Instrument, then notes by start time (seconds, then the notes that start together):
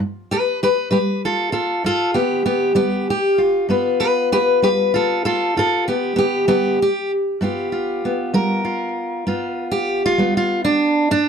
steel-string acoustic guitar
0.00 G2
0.31 G4 B4
0.63 G4 B4
0.91 G3 G4 B4
1.25 F4 A4
1.52 F4 A4
1.84 G2 F4 A4
2.14 B3 G4
2.46 B3 G4
2.75 G3 B3 G4
3.10 G4
3.38 F4
3.69 G2 B3 F4 B4
4.00 G4 B4
4.32 G4 B4
4.62 G3 G4 B4
4.94 F4 A4
5.25 F4 A4
5.56 G2 F4 A4
5.88 B3 G4
6.16 B3 G4
6.48 G3 B3 G4
6.82 G4
7.41 G2 B3 F4 G4
7.72 F4
8.05 B3
8.34 G3 A#4
8.65 F4
9.27 G2 B3 F4
9.72 G4
10.06 F4
10.18 G3 B3
10.37 F4
10.65 D4
11.11 G2 D4